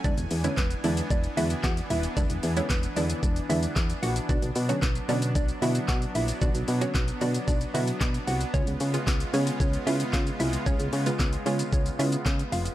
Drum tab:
HH |-xox-xox-xox-xox|-xox-xox-xox-xox|-xox-xox-xox-xox|-xox-xox-xox-xox|
SH |xxxxxxxxxxxxxxxx|xxxxxxxxxxxxxxxx|xxxxxxxxxxxxxxxx|xxxxxxxxxxxxxxxx|
CP |----x-------x---|----x-------x---|----x-------x---|----x-------x---|
SD |----o-------o---|----o-------o---|----o-------o---|----o-------o---|
BD |o---o---o---o---|o---o---o---o---|o---o---o---o---|o---o---o---o---|

HH |-xox-xox-xox-xox|-xox-xox-xox-xox|
SH |xxxxxxxxxxxxxxxx|xxxxxxxxxxxxxxxx|
CP |----x-------x---|----x-------x---|
SD |----o-------o---|----o-------o---|
BD |o---o---o---o---|o---o---o---o---|